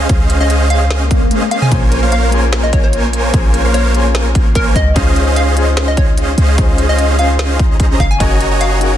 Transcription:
0.09 808-style bass C#2, supersaw synth C#4 G#4 C5 D#5 F5, kick, closed hi-hat
0.30 closed hi-hat
0.40 supersaw synth C#4 G#4 C5 D#5 F5, synth pluck D#5
0.50 closed hi-hat
0.70 supersaw synth C#4 G#4 C5 D#5 F5, synth pluck F5, closed hi-hat
0.91 snare, closed hi-hat, swell
1.11 kick, closed hi-hat
1.31 closed hi-hat, high tom
1.42 high tom
1.51 synth pluck F5, closed hi-hat
1.62 synth pluck G#5, mid tom
1.70 808-style bass A#1, grand piano A#3 C#4 F4 G#4 C5, supersaw synth A#3 A#4 C5 C#5 G#5, kick, closed hi-hat
1.92 closed hi-hat
2.03 supersaw synth A#3 A#4 C5 C#5 F5
2.12 synth pluck F5, closed hi-hat
2.31 grand piano A#3 C#4 F4 G#4, supersaw synth A#3 A#4 C5 C#5 G#5, closed hi-hat
2.35 grand piano C6
2.53 snare, closed hi-hat
2.63 synth pluck D#5
2.73 synth pluck C#5, kick, closed hi-hat
2.84 synth pluck C#5
2.93 closed hi-hat
3.13 closed hi-hat
3.32 808-style bass A#1, grand piano A#3 C#4 F4 G#4 C5, supersaw synth A#3 A#4 C5 C#5 G#5, kick, closed hi-hat
3.54 closed hi-hat
3.65 supersaw synth A#3 A#4 C5 C#5 F5
3.74 synth pluck C#5, closed hi-hat
3.93 grand piano A#3 C#4 F4 G#4 C6, supersaw synth A#3 A#4 C5 C#5 G#5, closed hi-hat
4.15 snare, closed hi-hat
4.35 kick, closed hi-hat
4.55 synth pluck A#4, kick, closed hi-hat
4.76 808-style bass C#2, synth pluck D#5, kick, closed hi-hat
4.94 grand piano C#4 D#4 F4 G#4 C5, supersaw synth C#4 G#4 C5 D#5 F5, kick, closed hi-hat
5.16 closed hi-hat
5.27 supersaw synth C#4 G#4 C5 D#5 F5
5.36 synth pluck F5, closed hi-hat
5.55 grand piano C#4 D#4 F4 G#4, supersaw synth C#4 G#4 C5 D#5 F5, closed hi-hat
5.59 grand piano C5
5.77 snare, closed hi-hat
5.88 synth pluck D#5
5.97 synth pluck C#5, kick, closed hi-hat
6.18 closed hi-hat
6.38 808-style bass C#2, closed hi-hat
6.56 grand piano C#4 D#4 F4 G#4 C5, supersaw synth C#4 G#4 C5 D#5 F5, kick, closed hi-hat
6.78 closed hi-hat
6.89 supersaw synth C#4 G#4 C5 D#5 F5, synth pluck D#5
6.99 closed hi-hat
7.17 grand piano C#4 D#4 F4 G#4 C5, supersaw synth C#4 G#4 C5 D#5 F5, synth pluck F5, closed hi-hat
7.39 snare, closed hi-hat
7.59 supersaw synth C#4 G#4 C5 D#5 A#5, kick, closed hi-hat
7.80 kick, closed hi-hat
8.00 808-style bass F#1, synth pluck F5, kick, closed hi-hat
8.11 synth pluck G#5
8.18 grand piano C#4 D#4 F#4 G#4 A#4, supersaw synth F#4 C#5 D#5 G#5 A#5, kick, closed hi-hat
8.41 closed hi-hat
8.51 supersaw synth F#4 C#5 D#5 G#5 A#5
8.61 synth pluck F5, closed hi-hat
8.79 grand piano C#4 D#4 F#4 G#4, supersaw synth F#4 C#5 D#5 G#5 A#5, closed hi-hat
8.83 grand piano A#4

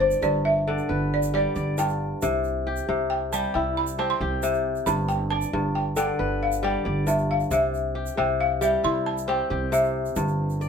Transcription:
Already playing: upright bass G1, kora G2 C4 G4
0.00 balafon C5, kora D5
0.11 shaker
0.22 upright bass G1, kora G2, balafon D5, shaker
0.45 balafon E5
0.67 kora D3 D5
0.78 shaker
0.89 upright bass G1, kora B4
1.14 balafon D5
1.23 shaker
1.34 kora G3 D5, balafon D5
1.55 upright bass G1, kora D5, shaker
1.78 kora G2, balafon G5, shaker
1.89 shaker
2.22 upright bass C2, kora C3, shaker
2.44 shaker
2.67 kora G4
2.76 shaker
2.89 upright bass C2, kora C3
3.10 balafon G5
3.33 kora G3 G4, balafon A5, shaker
3.54 upright bass C2, kora E4, balafon G5
3.77 balafon B5
3.87 shaker
3.98 kora C4 G4, balafon A5
4.10 balafon C6
4.21 upright bass C2, kora G4
4.43 kora C3, shaker
4.54 shaker
4.75 shaker
4.86 upright bass G1, kora G2, balafon B5, shaker
5.09 balafon G5, shaker
5.30 kora D5, balafon A5
5.42 shaker
5.53 upright bass G1, kora G2
5.75 balafon G5
5.96 kora D3 D5, balafon G5, shaker
6.19 upright bass G1, kora B4
6.43 balafon F5
6.52 shaker
6.63 kora G3 D5, balafon G5
6.85 upright bass G1, kora D5
7.07 kora G2, balafon E5, shaker
7.18 shaker
7.31 balafon F5
7.40 shaker
7.51 upright bass C2, kora C3, balafon E5, shaker
7.74 shaker
7.95 kora G4
8.06 shaker
8.17 upright bass C2, kora C3, balafon G5
8.41 balafon F5
8.61 kora G3 G4, balafon E5, shaker
8.84 upright bass C2, kora E4, balafon C6
9.06 balafon A5
9.18 shaker
9.28 kora C4 G4, balafon G5
9.50 upright bass C2, kora G4
9.72 kora C3, balafon E5, shaker
10.05 shaker
10.16 upright bass G1, kora G2, shaker
10.28 shaker
10.50 shaker
10.61 kora D5, shaker

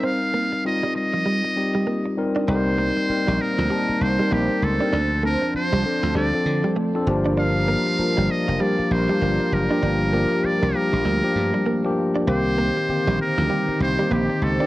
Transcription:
Already playing: tine electric piano G3 C4 D#4 A#4
0.03 clean electric guitar C4, muted trumpet F5
0.34 clean electric guitar A#3
0.52 muted clean electric guitar stroke
0.64 tine electric piano G3 C4 D#4 F4, muted trumpet D#5
0.83 clean electric guitar G3
0.95 muted trumpet D#5, muted clean electric guitar stroke
1.13 clean electric guitar F3
1.26 clean electric guitar G3
1.44 muted clean electric guitar stroke
1.56 tine electric piano G3 C4 D#4 G4
1.75 clean electric guitar G3
1.87 clean electric guitar A#3
2.06 muted clean electric guitar stroke
2.17 tine electric piano G3 C4 D#4 A#4
2.36 clean electric guitar D4
2.48 slap bass C2, tine electric piano G3 C4 D#4 A4, analog synth pad A#3 D#4 C5, clean electric guitar C4, muted trumpet C5
2.55 tine electric piano A#4
2.78 clean electric guitar A#3
2.97 muted clean electric guitar stroke
3.09 tine electric piano G3 C4 D#4 A#4, muted slap bass stroke
3.28 slap bass A#1, clean electric guitar G3
3.40 muted trumpet A#4, muted clean electric guitar stroke
3.58 slap bass D2, clean electric guitar F3
3.70 clean electric guitar G3, tine electric piano G3 C4 D#4 A5
3.89 muted clean electric guitar stroke, muted slap bass stroke
4.01 slap bass C2, muted trumpet C5
4.19 clean electric guitar G3, tine electric piano G3 C4 D#4 A#4
4.31 slap bass A#1, clean electric guitar A#3, muted trumpet G4
4.50 muted clean electric guitar stroke
4.62 slap bass C#2, muted trumpet A4
4.80 tine electric piano G3 C4 D#4 A#4, clean electric guitar D4
4.93 slap bass D2, analog synth pad F3 D4, clean electric guitar D4
5.23 tine electric piano F3 C4 D4 A5, clean electric guitar A3, muted trumpet A#4
5.42 muted clean electric guitar stroke
5.54 muted trumpet C5, muted slap bass stroke
5.72 slap bass C2, clean electric guitar G3
5.84 tine electric piano F3 C4 D4 A4, muted clean electric guitar stroke
6.03 slap bass D2, clean electric guitar F3
6.15 slap bass D2, clean electric guitar G3, muted trumpet D5
6.34 tine electric piano F3 C4 D4 A4, muted clean electric guitar stroke
6.46 slap bass D3
6.64 clean electric guitar G3
6.76 clean electric guitar A3
6.95 tine electric piano F3 C4 D4 A4, muted clean electric guitar stroke
7.07 slap bass G1, tine electric piano F3 A#3 D4 G4, analog synth pad G3 F4 A#4
7.26 clean electric guitar D4
7.37 clean electric guitar D4, muted trumpet F5
7.68 clean electric guitar A#3
7.87 muted clean electric guitar stroke
7.99 tine electric piano F3 A#3 D4 F4, muted slap bass stroke
8.17 slap bass G1, clean electric guitar G3
8.30 muted trumpet D#5, muted clean electric guitar stroke
8.48 slap bass F1, clean electric guitar F3
8.60 tine electric piano F3 A#3 D4 G4, clean electric guitar G3, muted trumpet D5
8.79 muted clean electric guitar stroke, muted slap bass stroke
8.91 slap bass A#1, muted trumpet C5
9.09 tine electric piano F3 A#3 D4 G4, clean electric guitar G3
9.21 slap bass G1, clean electric guitar A#3
9.40 muted clean electric guitar stroke
9.52 slap bass F#1, muted trumpet A#4
9.70 tine electric piano F3 A#3 D4 G4, clean electric guitar D4
9.83 slap bass G1, clean electric guitar D4
10.13 tine electric piano F3 A#3 D4 G4, clean electric guitar A#3
10.32 muted clean electric guitar stroke
10.44 muted trumpet D5, muted slap bass stroke
10.62 slap bass C2, clean electric guitar G3
10.74 tine electric piano F3 A#3 D4 G4, muted trumpet A#4, muted clean electric guitar stroke
10.93 slap bass A#1, clean electric guitar F3
11.05 slap bass D2, clean electric guitar G3
11.24 tine electric piano F3 A3 D4 G4, muted clean electric guitar stroke
11.31 tine electric piano A#3
11.36 slap bass G2
11.54 clean electric guitar G3
11.67 clean electric guitar A#3
11.85 tine electric piano F3 A#3 D4 G4, muted clean electric guitar stroke
12.16 clean electric guitar D4
12.27 slap bass C2, tine electric piano D#3 A#3 C4 G4, analog synth pad A#3 D#4 C5, clean electric guitar C4, muted trumpet C5
12.58 clean electric guitar A#3
12.77 muted clean electric guitar stroke
12.89 tine electric piano D3 A#3 C4 G4, muted slap bass stroke
12.95 tine electric piano D#3
13.07 slap bass A#1, clean electric guitar G3
13.19 muted trumpet A#4, muted clean electric guitar stroke
13.38 slap bass D2, clean electric guitar F3
13.50 tine electric piano D#3 A#3 C4 G4, clean electric guitar G3
13.68 muted slap bass stroke, muted clean electric guitar stroke
13.80 slap bass C2, muted trumpet C5
13.99 tine electric piano D#3 A#3 C4 G4, clean electric guitar G3
14.11 slap bass A#1, clean electric guitar A#3, muted trumpet G4
14.30 muted clean electric guitar stroke
14.42 slap bass C#2, muted trumpet A4
14.60 tine electric piano D#3 A#3 C4 G4, clean electric guitar D4

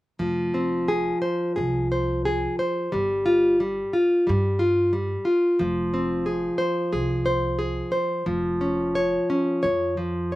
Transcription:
0.19 upright bass F1, nylon-string guitar F3
0.54 nylon-string guitar C4
0.88 nylon-string guitar G#4
1.22 nylon-string guitar C5
1.56 upright bass C2, nylon-string guitar G#4
1.92 nylon-string guitar C5
2.25 nylon-string guitar G#4
2.59 nylon-string guitar C5
2.92 upright bass G1, nylon-string guitar G3
3.26 nylon-string guitar F4
3.60 nylon-string guitar G3
3.93 nylon-string guitar F4
4.27 upright bass G2, nylon-string guitar G3
4.59 nylon-string guitar F4
4.93 nylon-string guitar G3
5.25 nylon-string guitar F4
5.59 upright bass F1, nylon-string guitar F3
5.94 nylon-string guitar C4
6.26 nylon-string guitar G#4
6.58 nylon-string guitar C5
6.93 upright bass C2, nylon-string guitar G#4
7.26 nylon-string guitar C5
7.59 nylon-string guitar G#4
7.92 nylon-string guitar C5
8.26 upright bass F1, nylon-string guitar F3
8.61 nylon-string guitar C#4
8.95 nylon-string guitar C#5
9.30 nylon-string guitar C#4
9.63 upright bass F2, nylon-string guitar C#5
9.97 nylon-string guitar F3
10.32 nylon-string guitar C#5

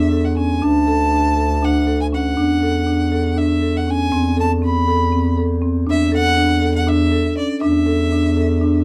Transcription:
Already playing: bass clarinet E2, violin E5
0.12 marimba A4
0.25 violin F#5
0.37 marimba C#4, violin G#5
0.62 bass clarinet D2, marimba D4, violin A5
0.87 marimba A4
1.11 marimba D4
1.37 marimba A4
1.62 marimba D4, violin F#5
1.87 marimba A4
2.01 violin G#5
2.13 marimba C#4, violin F#5
2.37 bass clarinet E2, marimba D4
2.62 marimba A4
2.87 marimba D4
3.12 marimba A4
3.36 marimba D4, violin E5
3.62 marimba A4
3.77 violin F#5
3.87 marimba C#4, violin G#5
4.12 bass clarinet E2, marimba C4
4.37 marimba A4, violin A5
4.62 marimba C4, violin B5
4.88 marimba A4
5.12 marimba C4
5.37 marimba A4
5.62 marimba C4
5.87 bass clarinet E2, marimba D4, violin E5
6.12 marimba A4, violin F#5
6.37 marimba D4
6.62 marimba A4
6.76 violin F#5
6.87 marimba D4, violin E5
7.12 marimba A4
7.37 marimba C#4, violin D5
7.62 bass clarinet E2, marimba D4, violin E5
7.86 marimba A4
8.12 marimba D4
8.37 marimba A4
8.61 marimba D4

